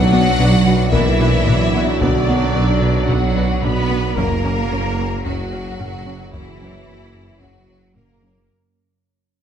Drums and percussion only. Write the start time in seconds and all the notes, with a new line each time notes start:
0.93 taiko
1.47 taiko low-mid
2.01 taiko
3.10 taiko
3.63 taiko low-mid
4.17 taiko
5.26 taiko
5.80 taiko low-mid
6.34 taiko
7.42 taiko
7.96 taiko low-mid